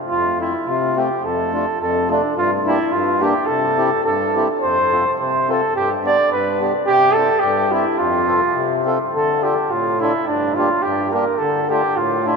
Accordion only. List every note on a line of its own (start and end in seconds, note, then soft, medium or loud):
0.11 0.54 F2 medium
0.40 0.52 A3 medium
0.40 0.53 C4 soft
0.40 0.53 F4 medium
0.66 1.09 C3 medium
0.97 1.09 A3 medium
0.97 1.09 C4 medium
0.97 1.09 F4 medium
1.22 1.65 F2 medium
1.53 1.65 A3 medium
1.53 1.65 D4 medium
1.53 1.66 F4 medium
1.79 2.22 F2 medium
2.09 2.21 A3 medium
2.09 2.22 D4 medium
2.09 2.22 F4 medium
2.36 2.78 G2 medium
2.67 2.78 A#3 medium
2.67 2.78 D4 medium
2.67 2.79 G4 medium
2.91 3.34 G2 medium
3.21 3.33 A#3 medium
3.21 3.33 D4 medium
3.21 3.34 G4 medium
3.49 3.92 C3 medium
3.76 3.90 C4 medium
3.76 3.90 E4 medium
3.76 3.90 G4 medium
4.04 4.48 G2 medium
4.35 4.47 C4 medium
4.35 4.48 E4 soft
4.35 4.48 G4 medium
4.63 5.06 F2 medium
4.92 5.04 C4 medium
4.92 5.04 F4 soft
4.92 5.05 A4 medium
5.20 5.62 C3 medium
5.48 5.60 C4 medium
5.48 5.61 F4 medium
5.48 5.61 A4 medium
5.75 6.17 G2 medium
6.04 6.16 B3 medium
6.04 6.17 D4 medium
6.04 6.17 G4 medium
6.31 6.73 G2 medium
6.60 6.72 B3 medium
6.60 6.72 D4 medium
6.60 6.73 G4 medium
6.87 7.29 C3 medium
7.17 7.28 C4 medium
7.17 7.29 E4 medium
7.17 7.29 G4 medium
7.42 7.85 G2 medium
7.72 7.84 C4 medium
7.72 7.84 E4 medium
7.72 7.85 G4 medium
7.98 8.42 F2 medium
8.27 8.40 C4 medium
8.27 8.40 F4 soft
8.27 8.41 A4 medium
8.55 8.98 C3 medium
8.85 8.98 C4 medium
8.85 8.98 F4 medium
8.85 8.98 A4 medium
9.13 9.56 D3 medium
9.42 9.55 D4 medium
9.42 9.55 F4 soft
9.42 9.55 A4 medium
9.70 10.13 A2 medium
10.01 10.13 D4 medium
10.01 10.12 F4 medium
10.01 10.13 A4 medium
10.27 10.69 G2 medium
10.58 10.69 A#3 soft
10.58 10.69 D4 medium
10.58 10.69 G4 medium
10.84 11.26 G2 medium
11.13 11.25 A#3 medium
11.13 11.25 D4 medium
11.13 11.25 G4 medium
11.40 11.82 D3 medium
11.70 11.81 A3 medium
11.70 11.82 D4 soft
11.70 11.82 F4 medium
11.96 12.37 A2 medium
12.25 12.37 A3 medium
12.25 12.37 D4 medium
12.25 12.37 F4 medium